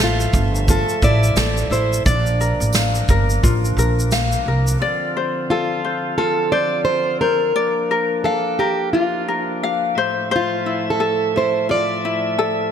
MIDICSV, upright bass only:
0, 0, Header, 1, 2, 480
1, 0, Start_track
1, 0, Key_signature, -1, "major"
1, 0, Tempo, 688073
1, 1434, Time_signature, 4, 2, 24, 8
1, 8871, End_track
2, 0, Start_track
2, 0, Title_t, "Upright bass"
2, 0, Program_c, 0, 32
2, 0, Note_on_c, 0, 33, 86
2, 172, Note_off_c, 0, 33, 0
2, 231, Note_on_c, 0, 31, 94
2, 547, Note_off_c, 0, 31, 0
2, 713, Note_on_c, 0, 33, 108
2, 910, Note_off_c, 0, 33, 0
2, 950, Note_on_c, 0, 33, 93
2, 1148, Note_off_c, 0, 33, 0
2, 1186, Note_on_c, 0, 33, 86
2, 1386, Note_off_c, 0, 33, 0
2, 1434, Note_on_c, 0, 34, 106
2, 1749, Note_off_c, 0, 34, 0
2, 1815, Note_on_c, 0, 33, 87
2, 2091, Note_off_c, 0, 33, 0
2, 2156, Note_on_c, 0, 31, 85
2, 2351, Note_off_c, 0, 31, 0
2, 2397, Note_on_c, 0, 33, 87
2, 2592, Note_off_c, 0, 33, 0
2, 2627, Note_on_c, 0, 34, 92
2, 3023, Note_off_c, 0, 34, 0
2, 3109, Note_on_c, 0, 36, 80
2, 3308, Note_off_c, 0, 36, 0
2, 8871, End_track
0, 0, End_of_file